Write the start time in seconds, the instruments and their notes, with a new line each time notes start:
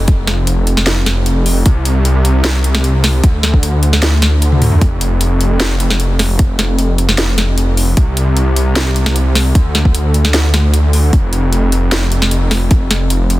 Already playing: detuned saw bass F1
0.08 kick, closed hi-hat
0.27 snare, closed hi-hat
0.47 closed hi-hat
0.67 closed hi-hat
0.77 snare
0.87 snare, closed hi-hat
1.06 snare, closed hi-hat
1.26 closed hi-hat
1.46 open hi-hat
1.66 detuned saw bass C2, kick, closed hi-hat
1.85 closed hi-hat
2.05 closed hi-hat
2.25 closed hi-hat
2.44 snare, closed hi-hat
2.64 closed hi-hat
2.75 snare
2.84 closed hi-hat
3.04 snare, open hi-hat
3.24 detuned saw bass D2, kick, closed hi-hat
3.43 snare, closed hi-hat
3.54 kick
3.63 closed hi-hat
3.83 closed hi-hat
3.93 snare
4.02 snare, closed hi-hat
4.22 snare, closed hi-hat
4.42 closed hi-hat
4.52 high tom
4.62 open hi-hat, mid tom
4.72 mid tom
4.81 detuned saw bass F1, kick, closed hi-hat
5.01 closed hi-hat
5.21 closed hi-hat
5.41 closed hi-hat
5.60 snare, closed hi-hat
5.80 closed hi-hat
5.90 snare
6.00 closed hi-hat
6.19 snare, open hi-hat
6.39 kick, closed hi-hat
6.59 snare, closed hi-hat
6.79 closed hi-hat
6.98 closed hi-hat
7.09 snare
7.18 snare, closed hi-hat
7.38 snare, closed hi-hat
7.58 closed hi-hat
7.77 open hi-hat
7.97 detuned saw bass C2, kick, closed hi-hat
8.17 closed hi-hat
8.37 closed hi-hat
8.56 closed hi-hat
8.76 snare, closed hi-hat
8.96 closed hi-hat
9.06 snare
9.16 closed hi-hat
9.35 snare, open hi-hat
9.55 detuned saw bass D2, kick, closed hi-hat
9.75 snare, closed hi-hat
9.85 kick
9.95 closed hi-hat
10.14 closed hi-hat
10.25 snare
10.34 snare, closed hi-hat
10.54 snare, closed hi-hat
10.74 closed hi-hat
10.93 open hi-hat
11.13 detuned saw bass F1, kick, closed hi-hat
11.33 closed hi-hat
11.53 closed hi-hat
11.72 closed hi-hat
11.92 snare, closed hi-hat
12.12 closed hi-hat
12.22 snare
12.31 closed hi-hat
12.51 snare, open hi-hat
12.71 kick, closed hi-hat
12.91 snare, closed hi-hat
13.10 closed hi-hat
13.30 closed hi-hat